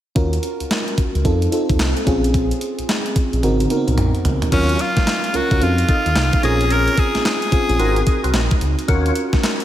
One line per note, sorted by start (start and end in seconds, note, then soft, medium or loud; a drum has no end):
0.15 0.39 D#2 loud
0.15 1.04 C#4 medium
0.15 1.04 F4 medium
0.15 1.05 F#4 medium
0.15 1.05 A#4 medium
0.15 kick medium
0.15 closed hi-hat medium
0.33 closed hi-hat medium
0.43 closed hi-hat medium
0.60 0.65 C#2 soft
0.60 closed hi-hat soft
0.71 snare loud
0.71 clap medium
0.71 closed hi-hat medium
0.88 closed hi-hat soft
0.98 1.05 C#2 soft
0.98 kick medium
0.98 closed hi-hat medium
1.15 1.23 C#2 medium
1.15 closed hi-hat soft
1.24 1.48 F2 loud
1.24 1.48 C4 medium
1.24 1.48 D#4 medium
1.24 1.48 F4 medium
1.24 1.49 A4 medium
1.24 kick medium
1.24 closed hi-hat medium
1.42 closed hi-hat soft
1.52 2.05 C4 medium
1.52 2.07 D#4 medium
1.52 2.06 F4 medium
1.52 2.07 A4 medium
1.52 closed hi-hat medium
1.70 1.78 D#2 medium
1.70 kick medium
1.70 closed hi-hat medium
1.79 1.94 C2 medium
1.79 snare loud
1.79 clap medium
1.79 closed hi-hat medium
1.97 closed hi-hat soft
2.06 2.52 A#1 medium
2.06 2.95 C4 medium
2.06 2.95 C#4 medium
2.06 2.96 F4 medium
2.06 2.96 G#4 loud
2.06 kick medium
2.06 closed hi-hat medium
2.24 closed hi-hat medium
2.34 kick medium
2.34 closed hi-hat medium
2.51 closed hi-hat soft
2.61 closed hi-hat medium
2.79 2.83 A#1 soft
2.79 closed hi-hat medium
2.89 snare loud
2.89 clap medium
2.89 closed hi-hat medium
3.06 closed hi-hat soft
3.16 3.23 A#1 soft
3.16 kick loud
3.16 closed hi-hat medium
3.33 3.41 A#1 loud
3.33 closed hi-hat soft
3.43 3.66 G#1 loud
3.43 3.66 C4 medium
3.43 3.66 D#4 medium
3.43 3.67 F#4 medium
3.43 3.67 A#4 medium
3.43 closed hi-hat medium
3.43 high tom medium
3.60 closed hi-hat medium
3.60 high tom soft
3.70 3.79 B3 medium
3.70 4.39 D#4 medium
3.70 4.39 F#4 medium
3.70 4.39 A#4 loud
3.70 closed hi-hat medium
3.77 4.42 C4 medium
3.88 3.96 C2 medium
3.88 closed hi-hat soft
3.88 mid tom medium
3.98 4.12 A#1 medium
3.98 closed hi-hat medium
3.98 mid tom medium
4.15 closed hi-hat soft
4.25 4.39 C#2 medium
4.25 closed hi-hat medium
4.25 floor tom medium
4.42 closed hi-hat medium
4.42 floor tom medium
4.52 4.75 D#2 loud
4.52 5.21 F#3 medium
4.52 5.20 C#4 medium
4.52 4.78 C#4 medium
4.52 4.82 C#4 medium
4.52 5.21 F4 medium
4.52 4.78 F4 medium
4.52 4.78 F#4 medium
4.52 5.21 A#4 medium
4.52 kick medium
4.52 closed hi-hat medium
4.52 crash medium
4.69 closed hi-hat medium
4.79 5.37 F4 medium
4.79 closed hi-hat medium
4.97 5.01 C#2 soft
4.97 kick loud
4.97 snare medium
4.97 closed hi-hat medium
5.07 snare loud
5.07 clap medium
5.07 closed hi-hat medium
5.24 closed hi-hat soft
5.34 5.41 C#2 medium
5.34 5.48 C#4 medium
5.34 5.48 F4 medium
5.34 5.48 F#4 medium
5.34 5.64 F#4 medium
5.34 5.48 A#4 medium
5.34 closed hi-hat medium
5.51 5.60 C#2 medium
5.51 5.61 C#4 medium
5.51 5.60 F4 medium
5.51 5.61 F#4 medium
5.51 5.62 A#4 medium
5.51 kick loud
5.51 closed hi-hat soft
5.61 5.84 F2 loud
5.61 6.29 C4 medium
5.61 6.30 D#4 medium
5.61 6.30 F4 medium
5.61 6.44 F4 loud
5.61 6.30 A4 medium
5.61 closed hi-hat medium
5.78 closed hi-hat medium
5.88 6.10 D#4 medium
5.88 6.10 F4 medium
5.88 6.10 A4 medium
5.88 kick medium
5.88 closed hi-hat medium
6.06 6.14 D#2 medium
6.06 closed hi-hat medium
6.16 6.30 C2 loud
6.16 snare loud
6.16 clap medium
6.16 closed hi-hat medium
6.33 kick medium
6.33 closed hi-hat soft
6.43 6.89 A#1 loud
6.43 7.32 C4 medium
6.43 6.65 C#4 medium
6.43 7.32 C#4 medium
6.43 7.32 F4 medium
6.43 6.65 G#4 medium
6.43 7.32 G#4 medium
6.43 6.73 G#4 loud
6.43 6.65 A#4 medium
6.43 closed hi-hat medium
6.61 closed hi-hat medium
6.70 6.96 C#4 medium
6.70 6.96 G#4 medium
6.70 6.96 A#4 medium
6.70 7.01 A#4 loud
6.70 closed hi-hat medium
6.88 closed hi-hat medium
6.97 7.26 G#4 loud
6.97 kick medium
6.97 closed hi-hat medium
7.15 7.19 A#1 soft
7.15 snare medium
7.15 closed hi-hat medium
7.25 8.31 G#4 loud
7.25 snare loud
7.25 clap medium
7.25 closed hi-hat medium
7.42 closed hi-hat soft
7.51 7.59 A#1 soft
7.51 7.66 C4 medium
7.51 7.66 C#4 medium
7.51 7.66 F4 medium
7.51 7.66 G#4 medium
7.51 kick loud
7.51 closed hi-hat medium
7.69 7.78 A#1 loud
7.69 7.78 C4 medium
7.69 7.79 C#4 medium
7.69 7.80 F4 medium
7.69 7.80 G#4 medium
7.69 closed hi-hat soft
7.79 8.02 G#1 loud
7.79 8.68 C4 medium
7.79 8.01 C4 medium
7.79 8.68 D#4 medium
7.79 8.01 F#4 medium
7.79 8.68 F#4 medium
7.79 8.01 A#4 medium
7.79 8.68 A#4 medium
7.79 closed hi-hat medium
7.96 closed hi-hat medium
8.07 kick loud
8.07 closed hi-hat medium
8.24 8.32 C2 medium
8.24 8.41 C4 medium
8.24 8.42 F#4 medium
8.24 8.42 A#4 medium
8.24 closed hi-hat medium
8.34 8.48 A#1 medium
8.34 snare loud
8.34 clap loud
8.34 closed hi-hat medium
8.51 kick loud
8.51 closed hi-hat soft
8.61 8.76 C#2 medium
8.61 closed hi-hat medium
8.79 closed hi-hat medium
8.88 9.11 D#2 loud
8.88 9.56 C#4 medium
8.88 9.57 F4 medium
8.88 9.14 F4 medium
8.88 9.14 F#4 medium
8.88 9.57 F#4 medium
8.88 9.57 A#4 medium
8.88 9.14 C#5 loud
8.88 kick loud
8.88 closed hi-hat medium
9.06 closed hi-hat medium
9.16 closed hi-hat medium
9.33 9.37 C#2 soft
9.33 kick loud
9.33 snare medium
9.33 closed hi-hat medium
9.43 snare loud
9.43 clap medium
9.43 closed hi-hat medium
9.60 closed hi-hat soft